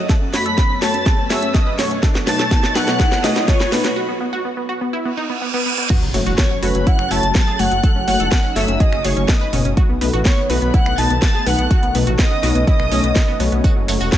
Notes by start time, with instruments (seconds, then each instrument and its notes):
Already playing: analog synth pad F#2 F#3 A3 C#5, synth texture A4 F#6, riser
0.09 analog synth pad B3, synth pluck A4, kick, snare, closed hi-hat
0.21 synth pluck C#4
0.33 synth pluck A3 C#4 F#4 C#5, soft synth lead B5, violin section B6, snare, open hi-hat
0.46 synth pluck A4, closed hi-hat
0.58 synth pluck C#4, kick, snare, closed hi-hat
0.70 synth pluck C#4
0.82 synth pluck A3 F#4 A4 C#5, soft synth lead A5, violin section A6, snare, open hi-hat
0.94 synth pluck C#4, closed hi-hat
1.06 synth pluck G#4, kick, snare, closed hi-hat
1.18 synth pluck C#4
1.30 synth pluck A3 F#4 G#4 C#5, soft synth lead E5, violin section E6, snare, open hi-hat
1.42 synth pluck C#4, closed hi-hat
1.54 synth pluck C#4, soft synth lead D#5, violin section D#6, kick, snare, closed hi-hat
1.67 synth pluck B4
1.79 synth pluck B2 A3 C#4 F#4 C#5, soft synth lead C#5, violin section C#6, snare, open hi-hat
1.91 synth pluck C#4, closed hi-hat
2.03 analog synth pad B2 F#3 A3 D#4 C#5, synth pluck A4, kick, snare, closed hi-hat
2.15 synth pluck B3, snare
2.27 synth pluck B2 A3 B3 D#4 B4, soft synth lead A5, violin section A6, snare, open hi-hat
2.39 synth pluck A4, snare, closed hi-hat
2.51 synth pluck B3, kick, snare, closed hi-hat
2.63 synth pluck B3, snare
2.75 synth pluck B2 A3 D#4 A4 B4, soft synth lead F#5, violin section F#6, snare, open hi-hat
2.88 synth pluck B3, snare, closed hi-hat
3.00 synth pluck G#4, kick, snare, closed hi-hat
3.12 synth pluck B3, snare
3.24 synth pluck B2 A3 D#4 G#4 B4, soft synth lead D#5, violin section D#6, snare, open hi-hat
3.36 synth pluck B3, snare, closed hi-hat
3.48 synth pluck B3, soft synth lead C#5, violin section C#6, kick, snare, closed hi-hat
3.60 synth pluck B4, snare
3.72 synth pluck B2 A3 B3 D#4 B4, soft synth lead B4, violin section B5, snare, open hi-hat
3.84 synth pluck B3, snare, closed hi-hat
3.96 synth pluck F#4
4.09 synth pluck B3
4.21 synth pluck B3
4.33 synth pluck F#4
4.45 synth pluck B3
4.57 synth pluck B3
4.69 synth pluck F#4
4.81 synth pluck B3
4.93 synth pluck E4, reverse cymbal
5.05 synth pluck B3
5.17 synth pluck D#4
5.30 synth pluck B3
5.42 synth pluck B3
5.54 synth pluck B3
5.66 synth pluck B3
5.78 synth pluck B3
5.90 analog synth pad F#3 A3 C#4, synth pluck F#4, kick, closed hi-hat, crash, impact
6.02 detuned saw bass F#1, synth pluck F#3
6.14 detuned saw bass F#1, synth pluck F#3 A3 F#4 C#5, open hi-hat
6.26 detuned saw bass E1, synth pluck F#4, closed hi-hat
6.38 synth pluck F#3, soft synth lead C#5, violin section C#6, kick, snare, closed hi-hat
6.51 synth pluck F#3
6.63 detuned saw bass F#1, synth pluck A3 F#4 C#5, soft synth lead B4, violin section B5, open hi-hat
6.75 detuned saw bass F#1, synth pluck F#3, closed hi-hat
6.87 synth pluck E4, soft synth lead F#5, violin section F#6, kick, closed hi-hat
6.99 detuned saw bass F#1, synth pluck F#3, finger snap
7.11 detuned saw bass F#1, synth pluck A3 E4 F#4 C#5, soft synth lead A5, violin section A6, open hi-hat
7.23 detuned saw bass F#1, synth pluck F#3, closed hi-hat
7.35 synth pluck F#3, violin section A6, kick, snare, closed hi-hat
7.47 synth pluck G#4
7.59 detuned saw bass F#1, synth pluck F#3 A3 F#4 C#5, soft synth lead F#5, violin section F#6, open hi-hat
7.71 detuned saw bass F#1, synth pluck F#3, closed hi-hat
7.83 analog synth pad D#4, synth pluck A4, kick, closed hi-hat
7.96 detuned saw bass F#1, synth pluck C#4
8.08 detuned saw bass F#1, synth pluck A3 C#4 F#4 C#5, soft synth lead F#5, violin section F#6, open hi-hat
8.20 detuned saw bass E1, synth pluck A4, closed hi-hat
8.32 synth pluck C#4, kick, snare, closed hi-hat
8.44 synth pluck C#4
8.56 detuned saw bass F#1, synth pluck A3 F#4 A4 C#5, soft synth lead E5, violin section E6, snare, open hi-hat
8.68 detuned saw bass F#1, synth pluck C#4, closed hi-hat
8.80 synth pluck G#4, soft synth lead D#5, violin section D#6, kick, closed hi-hat
8.92 detuned saw bass F#1, synth pluck C#4, finger snap
9.04 detuned saw bass F#1, synth pluck A3 F#4 G#4 C#5, soft synth lead C#5, violin section C#6, open hi-hat
9.17 detuned saw bass F#1, synth pluck C#4, closed hi-hat
9.28 synth pluck C#4, soft synth lead D#5, violin section D#6, kick, snare, closed hi-hat
9.41 synth pluck B4
9.53 detuned saw bass F#1, synth pluck B2 A3 C#4 F#4 C#5, open hi-hat
9.65 detuned saw bass F#1, synth pluck C#4, closed hi-hat
9.77 analog synth pad D#3 B3, synth pluck F#4, kick, closed hi-hat
9.89 detuned saw bass B1, synth pluck B3
10.01 detuned saw bass B1, synth pluck B2 A3 B3 D#4 B4, open hi-hat
10.13 detuned saw bass A1, synth pluck F#4, closed hi-hat
10.25 synth pluck B3, soft synth lead C#5, violin section C#6, kick, snare, closed hi-hat
10.38 synth pluck B3
10.50 detuned saw bass B1, synth pluck B2 A3 D#4 F#4 B4, soft synth lead B4, violin section B5, open hi-hat
10.62 detuned saw bass B1, synth pluck B3, closed hi-hat
10.74 synth pluck E4, soft synth lead F#5, violin section F#6, kick, closed hi-hat
10.86 detuned saw bass B1, synth pluck B3, finger snap
10.98 detuned saw bass B1, synth pluck B2 A3 D#4 B4, soft synth lead A5, violin section A6, open hi-hat
11.10 detuned saw bass B1, synth pluck B3, closed hi-hat
11.22 synth pluck B3, soft synth lead A5, violin section A6, kick, snare, closed hi-hat
11.34 synth pluck G#4
11.46 detuned saw bass B1, synth pluck B2 A3 B3 D#4 B4, soft synth lead F#5, violin section F#6, open hi-hat
11.59 detuned saw bass B1, synth pluck B3, closed hi-hat
11.71 analog synth pad C#4, synth pluck F#4, kick, closed hi-hat
11.83 detuned saw bass B1, synth pluck B3, closed hi-hat
11.95 detuned saw bass B1, synth pluck B2 A3 B3 D#4 B4, open hi-hat
12.07 detuned saw bass A1, synth pluck F#4, closed hi-hat
12.19 synth pluck B3, soft synth lead D#5, violin section D#6, kick, snare, closed hi-hat
12.31 synth pluck B3
12.43 detuned saw bass B1, synth pluck B2 A3 D#4 F#4 B4, snare, open hi-hat
12.55 detuned saw bass B1, synth pluck B3, closed hi-hat
12.67 synth pluck E4, soft synth lead D#5, violin section D#6, kick, closed hi-hat
12.80 detuned saw bass B1, synth pluck B3, finger snap
12.91 detuned saw bass B1, synth pluck B2 A3 C#4 D#4 C#5, open hi-hat
13.04 detuned saw bass B1, synth pluck B3, closed hi-hat
13.15 synth pluck B3, kick, snare, closed hi-hat
13.28 synth pluck B3
13.40 detuned saw bass B1, synth pluck A3 B3 F#4 C#5, open hi-hat
13.52 detuned saw bass B1, synth pluck B3, closed hi-hat
13.64 analog synth pad F#3, synth pluck F#4, kick, closed hi-hat, tambourine
13.76 detuned saw bass F#1, synth pluck F#3
13.88 detuned saw bass F#1, synth pluck F#3 A3 F#4 C#5, open hi-hat, ride, tambourine
14.01 detuned saw bass E1, synth pluck F#4, closed hi-hat, tambourine
14.12 synth pluck F#3, soft synth lead C#5, violin section C#6, kick, snare, closed hi-hat, tambourine